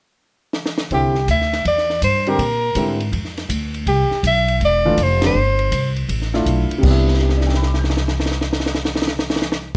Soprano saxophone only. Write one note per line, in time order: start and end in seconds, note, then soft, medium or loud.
0.94 1.27 G4 medium
1.31 1.64 E5 medium
1.68 2.01 D5 medium
2.04 2.31 C5 medium
2.29 3.01 A#4 medium
3.88 4.22 G4 medium
4.27 4.60 E5 medium
4.65 5.04 D5 loud
5.03 5.24 C5 medium
5.26 5.94 C5 medium